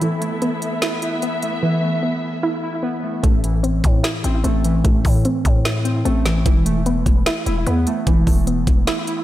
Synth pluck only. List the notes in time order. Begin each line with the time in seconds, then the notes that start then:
0.02 E3
0.42 B3
0.83 E4
1.23 B3
1.63 E3
2.03 B3
2.43 E4
2.83 B3
3.23 A3
3.63 C4
4.04 E4
4.44 C4
4.84 A3
5.25 C4
5.65 E4
6.05 C4
6.46 E3
6.86 B3
7.27 E4
7.67 B3
8.07 E3
8.47 B3
8.87 E4